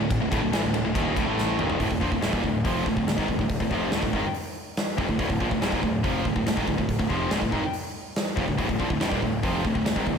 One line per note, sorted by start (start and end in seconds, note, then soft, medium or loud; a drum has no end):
0.00 0.19 D1 medium
0.00 0.17 D2 medium
0.00 0.17 A2 medium
0.00 1.76 D3 medium
0.00 1.76 A3 medium
0.00 1.76 D4 medium
0.00 1.76 A4 medium
0.11 kick loud
0.11 ride medium
0.20 0.31 D1 medium
0.20 0.30 D2 medium
0.20 0.30 A2 medium
0.31 0.41 D1 medium
0.31 0.40 D2 medium
0.31 0.40 A2 loud
0.31 kick loud
0.31 ride medium
0.41 0.52 D1 medium
0.41 0.52 D2 medium
0.41 0.51 A2 medium
0.52 0.62 A1 medium
0.52 0.62 A2 medium
0.52 0.63 E3 loud
0.52 snare loud
0.52 ride medium
0.63 0.73 D1 medium
0.63 0.72 D2 medium
0.63 0.73 A2 medium
0.74 0.84 D1 medium
0.74 0.83 D2 medium
0.74 0.83 A2 medium
0.74 ride medium
0.84 0.94 D1 medium
0.84 0.94 D2 medium
0.84 0.95 A2 medium
0.94 1.15 D#1 medium
0.94 1.14 D#2 medium
0.94 1.15 A#2 loud
0.94 1.16 D#3 loud
0.94 kick loud
0.94 ride loud
1.15 1.26 D1 medium
1.15 1.25 D2 medium
1.15 1.25 A2 loud
1.15 kick loud
1.15 ride medium
1.26 1.56 A1 loud
1.26 1.57 A2 medium
1.26 1.58 E3 medium
1.26 1.58 A3 loud
1.38 snare medium
1.57 1.78 D#1 medium
1.57 1.78 D#2 loud
1.57 1.79 A#2 loud
1.57 1.79 D#3 loud
1.57 mid tom loud
1.70 floor tom medium
1.79 1.90 D1 medium
1.79 1.88 D2 medium
1.79 1.88 A2 medium
1.79 kick medium
1.79 open hi-hat medium
1.89 2.00 D1 medium
1.89 1.99 D2 medium
1.89 2.00 A2 medium
1.89 kick medium
2.00 2.11 A#1 medium
2.00 2.10 A#2 medium
2.00 2.11 F3 medium
2.00 kick medium
2.11 2.22 D1 medium
2.11 2.20 D2 medium
2.11 2.21 A2 medium
2.11 kick medium
2.21 2.32 D1 medium
2.21 2.32 D2 medium
2.21 2.32 A2 medium
2.21 snare medium
2.21 open hi-hat soft
2.32 2.43 D#1 medium
2.32 2.42 D#2 medium
2.32 2.43 A#2 loud
2.32 kick medium
2.43 2.63 D1 medium
2.43 2.61 D2 medium
2.43 2.61 A2 medium
2.43 kick medium
2.64 2.84 F1 medium
2.64 2.85 F2 medium
2.64 2.85 C3 medium
2.64 2.86 F3 loud
2.64 kick medium
2.64 open hi-hat soft
2.86 2.96 D1 medium
2.86 2.96 D2 medium
2.86 2.96 A2 medium
2.86 kick medium
2.97 3.06 D1 medium
2.97 3.06 D2 medium
2.97 3.06 A2 medium
2.97 kick medium
3.07 3.17 D1 medium
3.07 3.16 D2 medium
3.07 3.18 A2 medium
3.07 snare loud
3.07 open hi-hat medium
3.17 3.28 G#1 medium
3.17 3.27 G#2 medium
3.17 3.28 D#3 loud
3.17 kick medium
3.28 3.38 D1 medium
3.28 3.37 D2 medium
3.28 3.38 A2 medium
3.28 kick medium
3.38 3.59 D1 medium
3.38 3.56 D2 medium
3.38 3.56 A2 medium
3.38 kick medium
3.49 kick medium
3.49 open hi-hat medium
3.60 3.70 D1 medium
3.60 3.70 D2 medium
3.60 3.71 A2 medium
3.60 kick medium
3.70 3.90 F1 medium
3.70 3.91 F2 medium
3.70 3.92 C3 medium
3.70 3.92 F3 loud
3.70 kick medium
3.91 4.02 D1 medium
3.91 4.01 D2 medium
3.91 4.01 A2 loud
3.91 snare medium
3.91 open hi-hat medium
4.02 4.12 D1 medium
4.02 4.12 D2 medium
4.02 4.13 A2 medium
4.02 kick medium
4.13 4.23 G#1 medium
4.13 4.23 G#2 medium
4.13 4.23 D#3 loud
4.13 kick medium
4.34 open hi-hat medium
4.77 snare loud
4.77 open hi-hat medium
4.97 5.08 F1 medium
4.97 5.07 F2 medium
4.97 5.08 C3 loud
4.97 kick loud
5.08 5.18 D1 medium
5.08 5.18 D2 medium
5.08 5.18 A2 medium
5.08 kick medium
5.19 5.29 D1 medium
5.19 5.28 D2 medium
5.19 5.29 A2 medium
5.19 kick medium
5.19 open hi-hat medium
5.30 5.40 D1 medium
5.30 5.40 D2 medium
5.30 5.40 A2 medium
5.30 kick medium
5.40 5.50 A#1 medium
5.40 5.50 A#2 medium
5.40 5.50 F3 medium
5.40 kick medium
5.50 5.61 D1 medium
5.50 5.60 D2 medium
5.50 5.61 A2 medium
5.50 kick medium
5.61 5.72 D1 medium
5.61 5.70 D2 medium
5.61 5.72 A2 loud
5.61 snare loud
5.61 open hi-hat soft
5.71 5.82 D#1 medium
5.71 5.82 D#2 medium
5.71 5.82 A#2 medium
5.71 kick medium
5.82 6.02 D1 medium
5.82 6.00 D2 medium
5.82 6.00 A2 medium
5.82 kick medium
6.03 6.24 F1 medium
6.03 6.24 F2 medium
6.03 6.24 C3 medium
6.03 6.25 F3 loud
6.03 kick medium
6.03 open hi-hat soft
6.25 6.35 D1 medium
6.25 6.34 D2 medium
6.25 6.35 A2 medium
6.25 kick medium
6.35 6.45 D1 medium
6.35 6.45 D2 medium
6.35 6.45 A2 medium
6.35 kick medium
6.46 6.56 D1 medium
6.46 6.56 D2 medium
6.46 6.57 A2 medium
6.46 snare loud
6.46 open hi-hat medium
6.56 6.67 G#1 medium
6.56 6.67 G#2 loud
6.56 6.67 D#3 medium
6.56 kick medium
6.67 6.78 D1 medium
6.67 6.76 D2 medium
6.67 6.76 A2 medium
6.67 kick medium
6.77 6.98 D1 medium
6.77 6.95 D2 medium
6.77 6.95 A2 medium
6.77 kick medium
6.89 kick medium
6.89 open hi-hat medium
6.98 7.09 D1 medium
6.98 7.08 D2 medium
6.98 7.09 A2 medium
6.98 kick medium
7.09 7.29 F1 medium
7.09 7.30 F2 medium
7.09 7.30 C3 medium
7.09 7.31 F3 loud
7.09 kick medium
7.30 7.40 D1 medium
7.30 7.40 D2 medium
7.30 7.40 A2 medium
7.30 snare loud
7.30 open hi-hat medium
7.41 7.52 D1 medium
7.41 7.50 D2 medium
7.41 7.52 A2 medium
7.41 kick medium
7.51 7.62 G#1 medium
7.51 7.62 G#2 medium
7.51 7.62 D#3 loud
7.51 kick medium
7.73 open hi-hat medium
8.16 snare loud
8.16 open hi-hat medium
8.36 8.47 F1 medium
8.36 8.47 F2 medium
8.36 8.47 C3 medium
8.36 kick loud
8.47 8.58 D1 medium
8.47 8.56 D2 medium
8.47 8.57 A2 medium
8.47 kick medium
8.57 8.68 D1 medium
8.57 8.67 D2 medium
8.57 8.68 A2 medium
8.57 kick medium
8.57 open hi-hat medium
8.68 8.79 D1 medium
8.68 8.78 D2 medium
8.68 8.80 A2 medium
8.68 kick medium
8.79 8.89 A#1 medium
8.79 8.89 A#2 medium
8.79 8.90 F3 medium
8.79 kick medium
8.90 8.99 D1 medium
8.90 8.99 D2 medium
8.90 9.00 A2 medium
8.90 kick medium
8.99 9.10 D1 medium
8.99 9.10 D2 medium
8.99 9.11 A2 medium
8.99 snare loud
8.99 open hi-hat medium
9.11 9.21 D#1 medium
9.11 9.21 D#2 medium
9.11 9.22 A#2 medium
9.11 kick medium
9.22 9.42 D1 medium
9.22 9.39 D2 medium
9.22 9.39 A2 medium
9.22 kick medium
9.43 9.63 F1 medium
9.43 9.63 F2 medium
9.43 9.64 C3 medium
9.43 9.64 F3 loud
9.43 kick medium
9.43 open hi-hat soft
9.64 9.74 D1 medium
9.64 9.73 D2 medium
9.64 9.73 A2 medium
9.64 kick medium
9.74 9.84 D1 medium
9.74 9.84 D2 medium
9.74 9.84 A2 medium
9.74 kick medium
9.85 9.95 D1 medium
9.85 9.95 D2 medium
9.85 9.96 A2 medium
9.85 snare loud
9.85 open hi-hat medium
9.96 10.06 G#1 medium
9.96 10.06 G#2 medium
9.96 10.06 D#3 medium
9.96 kick medium
10.06 10.16 D1 medium
10.06 10.16 D2 medium
10.06 10.17 A2 medium
10.06 kick medium